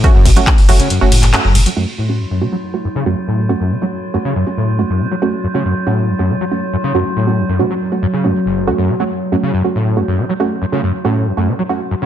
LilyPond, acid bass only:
\new Staff \with { instrumentName = "Acid bass" } { \clef bass \time 4/4 \key fis \minor \tempo 4 = 139 fis,16 fis,16 cis16 fis16 r8 fis,16 cis16 fis,16 r16 a,8 fis,16 fis,16 cis16 fis16 | fis,16 r16 a,8 fis,16 fis,16 cis16 fis16 r8 fis,16 cis16 fis,16 r16 a,8 | fis,16 fis,16 cis16 fis16 r8 fis,16 cis16 fis,16 r16 a,8 fis,16 fis,16 cis16 fis16 | r8 fis,16 cis16 fis,16 r16 a,8 fis,16 fis,16 cis16 fis16 r8 fis,16 cis16 |
fis,16 r16 a,8 fis,16 fis,16 cis16 fis16 r8 fis,16 cis16 fis,16 r16 fis,,8 | fis,16 fis,16 cis16 fis16 r8 fis,16 cis16 fis,16 r16 a,8 fis,16 fis,16 cis16 fis16 | r8 fis,16 cis16 fis,16 r16 a,8 fis,16 fis,16 cis16 fis16 r8 fis,16 cis16 | }